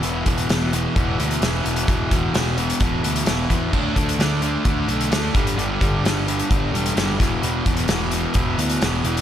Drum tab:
CC |----------------|----------------|x---------------|----------------|
HH |x-xxx-x-x-xxx-xx|x-x-x-xxx-xxx-x-|--xxx-x-x-xxx-xx|x-x-x-xxx-xxx-x-|
SD |----o-------o---|----o-------o---|----o-------o---|----o-------o-o-|
BD |--o-----o-------|o-o-----o-----o-|o-o-----o-----o-|--o-----o-----o-|

CC |----------------|
HH |x-xxx-x-x-xxx-xx|
SD |----o-------o---|
BD |--o-----o-------|